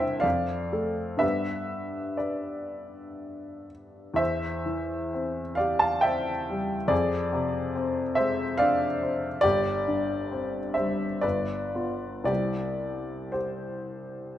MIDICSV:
0, 0, Header, 1, 2, 480
1, 0, Start_track
1, 0, Key_signature, 0, "major"
1, 0, Tempo, 986842
1, 597, Time_signature, 3, 2, 24, 8
1, 2040, Tempo, 937500
1, 2520, Tempo, 892857
1, 3480, Tempo, 848656
1, 5400, Tempo, 931677
1, 5880, Tempo, 1063830
1, 7295, End_track
2, 0, Start_track
2, 0, Title_t, "Upright piano"
2, 0, Program_c, 0, 0
2, 0, Control_c, 0, 64, 127
2, 0, Note_on_c, 0, 36, 67
2, 0, Note_on_c, 0, 43, 54
2, 0, Note_on_c, 0, 60, 48
2, 0, Note_on_c, 0, 64, 55
2, 0, Note_on_c, 0, 72, 53
2, 0, Note_on_c, 0, 76, 70
2, 0, Note_on_c, 0, 79, 84
2, 0, Note_on_c, 0, 81, 114
2, 97, Note_off_c, 0, 36, 0
2, 97, Note_on_c, 0, 77, 83
2, 102, Note_on_c, 0, 74, 64
2, 104, Note_off_c, 0, 72, 0
2, 110, Note_off_c, 0, 76, 0
2, 113, Note_on_c, 0, 41, 59
2, 115, Note_off_c, 0, 64, 0
2, 127, Control_c, 0, 64, 0
2, 129, Note_off_c, 0, 81, 0
2, 130, Note_off_c, 0, 43, 0
2, 131, Note_off_c, 0, 79, 0
2, 132, Note_off_c, 0, 60, 0
2, 217, Control_c, 0, 64, 127
2, 353, Note_on_c, 0, 57, 43
2, 354, Note_on_c, 0, 69, 44
2, 569, Note_on_c, 0, 43, 49
2, 570, Note_off_c, 0, 74, 0
2, 574, Note_on_c, 0, 55, 42
2, 576, Note_off_c, 0, 57, 0
2, 576, Note_off_c, 0, 69, 0
2, 578, Note_on_c, 0, 76, 76
2, 580, Note_on_c, 0, 71, 62
2, 581, Note_off_c, 0, 41, 0
2, 581, Note_on_c, 0, 59, 41
2, 587, Note_off_c, 0, 77, 0
2, 587, Note_on_c, 0, 67, 36
2, 606, Control_c, 0, 64, 0
2, 692, Control_c, 0, 64, 127
2, 1041, Note_off_c, 0, 71, 0
2, 1057, Note_on_c, 0, 74, 52
2, 1059, Note_off_c, 0, 76, 0
2, 1063, Note_on_c, 0, 71, 39
2, 1777, Note_off_c, 0, 71, 0
2, 1794, Note_off_c, 0, 74, 0
2, 2006, Note_off_c, 0, 43, 0
2, 2008, Note_off_c, 0, 55, 0
2, 2012, Note_off_c, 0, 59, 0
2, 2012, Note_on_c, 0, 40, 54
2, 2015, Note_off_c, 0, 67, 0
2, 2024, Note_on_c, 0, 76, 81
2, 2031, Note_on_c, 0, 72, 59
2, 2050, Control_c, 0, 64, 0
2, 2148, Control_c, 0, 64, 127
2, 2277, Note_on_c, 0, 52, 43
2, 2525, Note_on_c, 0, 60, 46
2, 2666, Note_off_c, 0, 52, 0
2, 2740, Note_off_c, 0, 72, 0
2, 2746, Note_on_c, 0, 77, 73
2, 2758, Note_off_c, 0, 76, 0
2, 2758, Note_on_c, 0, 74, 57
2, 2769, Note_on_c, 0, 67, 45
2, 2874, Note_off_c, 0, 77, 0
2, 2876, Note_off_c, 0, 74, 0
2, 2876, Note_on_c, 0, 81, 77
2, 2882, Note_on_c, 0, 77, 61
2, 2916, Note_off_c, 0, 60, 0
2, 2993, Note_on_c, 0, 79, 83
2, 2998, Note_off_c, 0, 77, 0
2, 3001, Note_on_c, 0, 76, 64
2, 3004, Note_off_c, 0, 81, 0
2, 3012, Note_on_c, 0, 60, 47
2, 3155, Note_off_c, 0, 67, 0
2, 3256, Note_on_c, 0, 55, 49
2, 3388, Note_off_c, 0, 60, 0
2, 3442, Note_off_c, 0, 40, 0
2, 3452, Note_off_c, 0, 76, 0
2, 3459, Note_on_c, 0, 41, 67
2, 3460, Note_on_c, 0, 74, 85
2, 3470, Note_off_c, 0, 79, 0
2, 3472, Note_on_c, 0, 68, 68
2, 3483, Note_off_c, 0, 55, 0
2, 3486, Control_c, 0, 64, 0
2, 3583, Control_c, 0, 64, 127
2, 3710, Note_on_c, 0, 48, 54
2, 3954, Note_on_c, 0, 60, 54
2, 4095, Note_off_c, 0, 48, 0
2, 4168, Note_off_c, 0, 68, 0
2, 4179, Note_on_c, 0, 76, 81
2, 4184, Note_off_c, 0, 74, 0
2, 4188, Note_on_c, 0, 72, 65
2, 4201, Note_on_c, 0, 56, 52
2, 4336, Note_off_c, 0, 60, 0
2, 4413, Note_off_c, 0, 72, 0
2, 4418, Note_on_c, 0, 77, 93
2, 4425, Note_off_c, 0, 76, 0
2, 4427, Note_on_c, 0, 74, 71
2, 4434, Note_on_c, 0, 62, 51
2, 4579, Note_off_c, 0, 56, 0
2, 4672, Note_on_c, 0, 60, 50
2, 4814, Note_off_c, 0, 62, 0
2, 4876, Note_off_c, 0, 41, 0
2, 4882, Note_off_c, 0, 74, 0
2, 4890, Note_on_c, 0, 74, 101
2, 4901, Note_off_c, 0, 77, 0
2, 4901, Note_on_c, 0, 67, 73
2, 4910, Note_off_c, 0, 60, 0
2, 4910, Note_on_c, 0, 31, 64
2, 4917, Control_c, 0, 64, 0
2, 5003, Control_c, 0, 64, 127
2, 5154, Note_on_c, 0, 43, 49
2, 5401, Note_on_c, 0, 60, 48
2, 5540, Note_off_c, 0, 43, 0
2, 5609, Note_off_c, 0, 67, 0
2, 5621, Note_on_c, 0, 76, 65
2, 5625, Note_off_c, 0, 74, 0
2, 5627, Note_on_c, 0, 72, 50
2, 5638, Note_on_c, 0, 55, 45
2, 5780, Note_off_c, 0, 60, 0
2, 5858, Note_off_c, 0, 31, 0
2, 5858, Note_off_c, 0, 72, 0
2, 5865, Note_on_c, 0, 74, 71
2, 5872, Note_off_c, 0, 76, 0
2, 5872, Note_on_c, 0, 71, 57
2, 5881, Note_off_c, 0, 55, 0
2, 5882, Note_on_c, 0, 31, 52
2, 5886, Control_c, 0, 64, 0
2, 5966, Control_c, 0, 64, 127
2, 6106, Note_on_c, 0, 59, 37
2, 6110, Note_on_c, 0, 65, 43
2, 6329, Note_off_c, 0, 71, 0
2, 6329, Note_off_c, 0, 74, 0
2, 6329, Note_on_c, 0, 36, 50
2, 6332, Note_off_c, 0, 59, 0
2, 6333, Note_off_c, 0, 65, 0
2, 6335, Note_on_c, 0, 55, 35
2, 6336, Note_on_c, 0, 74, 73
2, 6338, Note_off_c, 0, 31, 0
2, 6339, Note_on_c, 0, 60, 35
2, 6340, Note_on_c, 0, 67, 54
2, 6343, Note_on_c, 0, 64, 34
2, 6361, Control_c, 0, 64, 0
2, 6452, Control_c, 0, 64, 127
2, 6816, Note_off_c, 0, 67, 0
2, 6817, Note_on_c, 0, 72, 47
2, 6823, Note_on_c, 0, 67, 38
2, 6834, Note_off_c, 0, 74, 0
2, 7291, Note_off_c, 0, 67, 0
2, 7295, Note_off_c, 0, 36, 0
2, 7295, Note_off_c, 0, 55, 0
2, 7295, Note_off_c, 0, 60, 0
2, 7295, Note_off_c, 0, 64, 0
2, 7295, Note_off_c, 0, 72, 0
2, 7295, End_track
0, 0, End_of_file